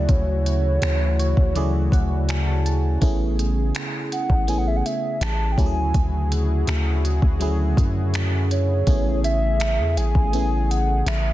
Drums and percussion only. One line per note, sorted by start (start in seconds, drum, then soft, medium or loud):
0.09 kick loud
0.09 closed hi-hat medium
0.46 closed hi-hat medium
0.82 finger snap loud
0.82 closed hi-hat medium
1.20 closed hi-hat medium
1.37 kick medium
1.56 closed hi-hat soft
1.92 kick medium
1.92 closed hi-hat medium
2.29 finger snap loud
2.29 closed hi-hat medium
2.66 closed hi-hat medium
3.02 kick loud
3.02 closed hi-hat medium
3.39 closed hi-hat medium
3.75 finger snap loud
3.75 closed hi-hat medium
4.12 closed hi-hat medium
4.30 kick medium
4.48 closed hi-hat medium
4.86 closed hi-hat medium
5.21 finger snap loud
5.21 closed hi-hat medium
5.58 kick medium
5.58 closed hi-hat medium
5.94 kick loud
5.94 closed hi-hat medium
6.32 closed hi-hat medium
6.67 finger snap loud
6.67 closed hi-hat medium
7.05 closed hi-hat medium
7.22 kick medium
7.41 closed hi-hat medium
7.77 kick medium
7.77 closed hi-hat medium
8.14 finger snap loud
8.14 closed hi-hat medium
8.51 closed hi-hat medium
8.87 kick loud
8.87 closed hi-hat medium
9.24 closed hi-hat medium
9.60 finger snap loud
9.60 closed hi-hat medium
9.97 closed hi-hat medium
10.15 kick medium
10.33 closed hi-hat medium
10.71 closed hi-hat medium
11.07 finger snap loud
11.07 closed hi-hat medium